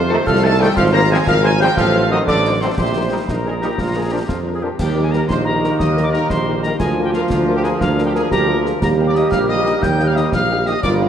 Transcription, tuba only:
0.00 0.18 F2 loud
0.26 0.69 C2 loud
0.76 1.19 G#1 loud
1.26 1.69 G#1 loud
1.77 2.19 A1 loud
2.28 2.70 A1 loud
2.77 3.19 A#1 medium
3.28 3.70 A#1 medium
3.78 4.21 A#1 medium
4.28 4.70 F2 medium
4.79 5.21 D#2 medium
5.28 5.71 A#1 medium
5.79 6.17 D#2 loud
6.30 6.72 A#1 medium
6.80 7.22 D2 medium
7.30 7.72 D2 loud
7.80 8.22 D2 loud
8.31 8.73 D2 medium
8.81 9.23 D#2 medium
9.31 9.73 A#1 loud
9.81 10.24 D#2 loud
10.32 10.74 A#1 loud
10.82 11.09 G1 loud

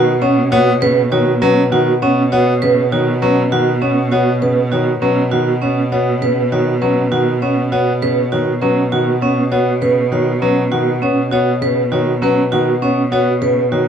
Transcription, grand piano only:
0.00 0.11 D#3 medium
0.22 0.41 B3 medium
0.52 0.71 B3 loud
0.82 1.01 C#3 medium
1.12 1.31 D#3 medium
1.42 1.61 F#3 loud
1.72 1.91 D#3 medium
2.02 2.21 B3 medium
2.33 2.52 B3 loud
2.63 2.82 C#3 medium
2.92 3.11 D#3 medium
3.22 3.41 F#3 medium
3.52 3.71 D#3 medium
3.82 4.01 B3 medium
4.12 4.31 B3 medium
4.42 4.61 C#3 medium
4.72 4.91 D#3 medium
5.02 5.21 F#3 medium
5.32 5.51 D#3 medium
5.62 5.81 B3 medium
5.92 6.11 B3 medium
6.22 6.41 C#3 medium
6.52 6.71 D#3 medium
6.82 7.01 F#3 medium
7.12 7.31 D#3 medium
7.42 7.61 B3 medium
7.72 7.91 B3 medium
8.02 8.21 C#3 medium
8.33 8.51 D#3 medium
8.62 8.81 F#3 medium
8.92 9.11 D#3 medium
9.22 9.41 B3 medium
9.52 9.71 B3 medium
9.82 10.01 C#3 medium
10.12 10.31 D#3 medium
10.42 10.61 F#3 medium
10.72 10.91 D#3 medium
11.02 11.21 B3 medium
11.32 11.51 B3 medium
11.61 11.81 C#3 medium
11.92 12.11 D#3 medium
12.22 12.41 F#3 medium
12.52 12.71 D#3 medium
12.82 13.01 B3 medium
13.12 13.31 B3 medium
13.42 13.61 C#3 medium
13.72 13.88 D#3 medium

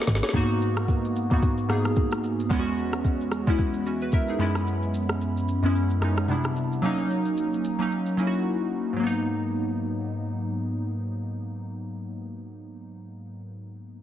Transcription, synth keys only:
0.00 0.34 A#3 loud
0.00 0.36 C#4 loud
0.00 0.36 D#4 loud
0.00 0.36 F#4 loud
0.00 0.24 G#4 loud
0.00 0.22 A#4 medium
0.00 0.35 B4 medium
0.00 0.22 D#5 medium
0.24 0.49 G#4 medium
0.24 0.49 C#5 medium
0.33 1.10 G#2 loud
0.33 1.11 A#3 loud
0.33 1.11 B3 medium
0.33 1.12 D#4 loud
0.33 1.12 F#4 loud
1.30 1.62 G#2 medium
1.30 1.63 A#3 medium
1.30 1.63 B3 medium
1.30 1.63 D#4 medium
1.30 1.64 F#4 medium
1.68 2.36 G#2 medium
1.68 2.36 A#3 medium
1.68 2.36 B3 medium
1.68 2.37 D#4 medium
1.68 2.37 G#4 medium
2.49 3.26 E2 loud
2.49 3.27 G#3 loud
2.49 3.27 B3 loud
2.49 3.28 C#4 loud
2.49 2.59 E4 medium
2.59 3.31 F#4 loud
3.46 3.78 E2 medium
3.46 3.79 G#3 medium
3.46 3.79 B3 medium
3.46 3.80 C#4 medium
3.46 3.80 E4 medium
3.87 4.01 C#4 medium
3.87 4.01 F#4 medium
4.02 4.13 F#4 medium
4.02 4.13 B4 medium
4.13 4.28 E4 medium
4.13 4.28 A#4 medium
4.13 4.38 E5 medium
4.29 4.55 D#4 soft
4.29 4.55 G#4 medium
4.39 5.27 F#2 medium
4.39 5.27 G#3 medium
4.39 5.27 B3 medium
4.39 5.28 C#4 medium
4.39 5.28 E4 loud
4.39 4.65 B5 medium
5.62 5.95 F#2 medium
5.62 5.95 G#3 medium
5.62 5.95 B3 medium
5.62 5.96 C#4 medium
5.62 5.96 E4 medium
6.01 6.28 F#2 medium
6.01 6.29 G#3 medium
6.01 6.29 B3 medium
6.01 6.30 C#4 medium
6.01 6.30 D#4 medium
6.28 6.73 C3 medium
6.28 6.74 G3 medium
6.28 6.74 B3 medium
6.28 6.75 D4 medium
6.28 6.75 E4 medium
6.82 7.59 F#3 loud
6.82 7.60 A#3 medium
6.82 7.60 C#4 loud
6.82 7.61 D#4 loud
7.79 8.11 F#3 medium
7.79 8.11 A#3 medium
7.79 8.12 C#4 medium
7.79 8.13 D#4 medium
8.17 8.84 F#3 medium
8.17 8.85 A#3 medium
8.17 8.85 C#4 medium
8.17 8.27 E4 medium
8.27 8.89 F#4 medium
8.93 12.95 G#2 medium
8.93 12.98 F#3 medium
9.00 13.02 A#3 medium
9.00 13.05 B3 medium
9.07 13.09 D#4 medium

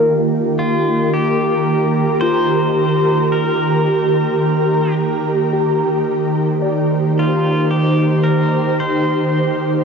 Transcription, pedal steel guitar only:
0.59 1.15 F4 medium
1.13 2.27 G4 medium
2.21 3.32 C5 loud
3.32 4.94 A#4 medium
7.19 7.69 F4 medium
7.71 8.28 G4 medium
8.23 8.80 A#4 medium
8.80 9.84 C5 loud

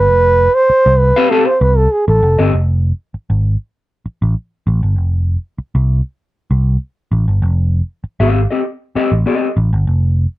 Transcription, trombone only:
0.00 0.56 B4 loud
0.54 1.01 C5 loud
0.99 1.31 B4 loud
1.30 1.48 A4 loud
1.46 1.63 C5 loud
1.61 1.79 B4 loud
1.78 1.93 A4 loud
1.92 2.07 G#4 loud
2.08 2.50 A4 medium

